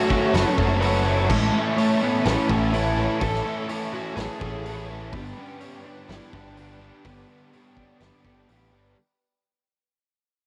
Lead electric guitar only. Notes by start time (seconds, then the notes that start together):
Already playing: F#4
1.31 G#3
1.54 A3
2.03 B3
2.26 C#4
2.73 E4
3.20 A4
3.93 F#4
4.16 G#4
5.13 B3
5.37 C#4
5.85 D4
6.10 E4
6.34 D4
7.06 B3